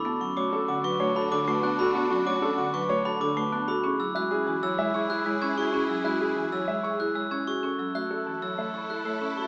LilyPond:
<<
  \new Staff \with { instrumentName = "Glockenspiel" } { \time 6/4 \key d \lydian \tempo 4 = 190 r8 cis'''8 d'''8 r8 d'''8 cis'''8 r8 b''8 d'''8 cis'''8 fis'''8 b''8 | r8 cis'''8 d'''8 r8 d'''8 cis'''8 r8 b''8 d'''8 cis'''8 fis'''8 b''8 | r8 e'''8 fis'''8 r4 e'''8 r8 e'''8 fis'''8 e'''8 gis'''8 cis'''8 | r8 e'''8 fis'''8 r4 e'''8 r8 e'''8 fis'''8 e'''8 gis'''8 cis'''8 |
r8 e'''8 fis'''8 r4 e'''8 r8 e'''8 fis'''8 e'''8 r8 cis'''8 | }
  \new Staff \with { instrumentName = "Grand piano" } { \time 6/4 \key d \lydian a''8 r8 cis''8 a'8 fis''8 r8 cis''8 a''8 a'8 r8 a''8 a'8 | a''8 r8 cis''8 a'8 fis''8 r8 cis''8 a''8 a'8 r8 a''8 a'8 | cis'''8 r8 e''8 gis'8 gis''8 r8 e''8 cis'''8 gis'8 r8 cis'''8 gis'8 | cis'''8 r8 e''8 gis'8 gis''8 r8 e''8 cis'''8 gis'8 r8 cis'''8 gis'8 |
cis'''8 r8 e''8 a'8 a''8 r8 e''8 cis'''8 a'8 r8 cis'''8 a'8 | }
  \new Staff \with { instrumentName = "Clarinet" } { \time 6/4 \key d \lydian fis'8 fis'8 fis'8 fis'8 fis'8 fis'8 fis'8 fis'8 fis'8 fis'8 fis'8 fis'8 | fis'8 fis'8 fis'8 fis'8 fis'8 fis'8 fis'8 fis'8 fis'8 fis'8 fis'8 r8 | e'8 e'8 e'8 e'8 e'8 e'8 e'8 e'8 e'8 e'8 e'8 e'8 | e'8 e'8 e'8 e'8 e'8 e'8 e'8 e'8 e'8 e'8 e'8 r8 |
a'8 a'8 a'8 a'8 a'8 a'8 a'8 a'8 a'8 a'8 a'8 a'8 | }
  \new Staff \with { instrumentName = "Vibraphone" } { \time 6/4 \key d \lydian a'8 cis'8 fis'8 cis'8 fis'8 b'8 cis''8 a'8 d'8 b'8 d'8 fis'8 | a'8 cis'8 fis'8 cis'8 fis'8 b'8 cis''8 a'8 d'8 b'8 d'8 fis'8 | gis'8 cis'8 fis'8 cis'8 fis'8 cis''8 e''8 gis'8 e'8 cis''8 e'8 fis'8 | gis'8 cis'8 fis'8 cis'8 fis'8 cis''8 e''8 gis'8 e'8 cis''8 e'8 fis'8 |
a'8 cis'8 fis'8 cis'8 fis'8 cis''8 e''8 a'8 e'8 cis''8 e'8 fis'8 | }
  \new Staff \with { instrumentName = "String section" } { \time 6/4 \key d \lydian <d' fis'>1.~ | <d' fis'>1~ <d' fis'>4. r8 | <e' gis'>1.~ | <e' gis'>1~ <e' gis'>4. r8 |
<e' a'>1. | }
  \new Staff \with { instrumentName = "Marimba" } { \clef bass \time 6/4 \key d \lydian b8 fis8 a8 r8 d8 fis8 a8 r8 d8 a8 b8 r8 | b8 fis8 a8 r8 d8 fis8 a8 r8 d8 a8 b8 r8 | cis'8 fis8 gis8 r8 e8 fis8 gis8 r4 gis8 cis'8 r8 | cis'8 fis8 gis8 r8 e8 fis8 gis8 r4 gis8 cis'8 r8 |
cis'8 fis8 a8 r8 e8 fis8 a8 r4 a8 cis'8 r8 | }
>>